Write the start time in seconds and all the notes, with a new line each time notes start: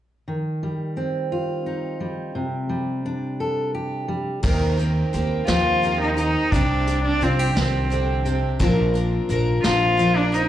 0.28 D#3
0.63 G3
0.97 C4
1.32 F4
1.66 D#4
2.00 G3
2.35 C3
2.69 G3
3.06 D4
3.40 A4
3.75 G4
4.08 G3
4.43 D#2 C3 D#3 A#3 C4 G4 A#4, kick, crash
4.77 A#3 C4 G4 A#4, closed hi-hat
5.13 D#2 A#3 C4 G4 A#4, closed hi-hat
5.47 D#2 C3 D#3 F3 A#3 C4 F4 G4 A#4, snare, closed hi-hat
5.82 D#3 A#3 C4 G4 A#4, closed hi-hat
6.01 D#4
6.17 A#3 C4 D#4 G4 A#4, closed hi-hat
6.52 C2 C3 G3 C4 D4 G4, kick, closed hi-hat
6.87 C4 D4 G4, closed hi-hat
7.04 D4
7.21 C2 G3 C4 D4 F4 G4, closed hi-hat
7.39 G4
7.55 C2 C3 D#3 G3 C4 D4 G4, snare, closed hi-hat
7.90 D3 G3 C4 D4 G4, closed hi-hat
8.25 C3 C4 D4 G4, closed hi-hat
8.59 A#1 A#2 D3 F3 C4 D4 F4 A#4, kick, closed hi-hat
8.94 F3 C4 D4 A#4, closed hi-hat
9.29 A#1 F3 C4 D4 A#4, closed hi-hat
9.64 A#1 A#2 D3 F3 C4 D4 F4 A#4, snare, closed hi-hat
9.98 F3 C4 D4 A#4, closed hi-hat
10.17 D4
10.32 F3 C4 D4 D#4 A#4, closed hi-hat